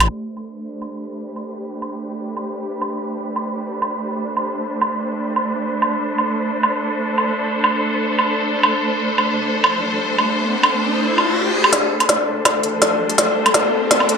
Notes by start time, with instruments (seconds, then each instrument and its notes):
0.00 closed hi-hat, low woodblock
0.09 string section A3, synth texture B5
0.31 string section C5
0.37 string section D4, low woodblock
0.71 string section G4
0.82 low woodblock
1.36 low woodblock
1.82 low woodblock
2.37 low woodblock
2.82 low woodblock
3.36 low woodblock
3.82 low woodblock
4.37 low woodblock
4.82 low woodblock
5.36 low woodblock
5.80 string section A4, low woodblock
6.18 low woodblock
6.63 low woodblock
7.18 low woodblock
7.64 low woodblock
8.19 low woodblock
8.63 low woodblock
8.82 riser
9.18 low woodblock
9.64 low woodblock
10.18 low woodblock
10.63 low woodblock
11.18 low woodblock
11.64 low woodblock
11.72 synth texture A4, snare, closed hi-hat, riser
12.00 closed hi-hat, low woodblock
12.09 snare, closed hi-hat
12.32 string section G4
12.45 snare, closed hi-hat, low woodblock
12.63 closed hi-hat
12.82 snare, closed hi-hat
13.10 closed hi-hat
13.18 snare, closed hi-hat
13.46 closed hi-hat, low woodblock
13.54 snare, closed hi-hat
13.91 snare, closed hi-hat
14.00 low woodblock
14.09 closed hi-hat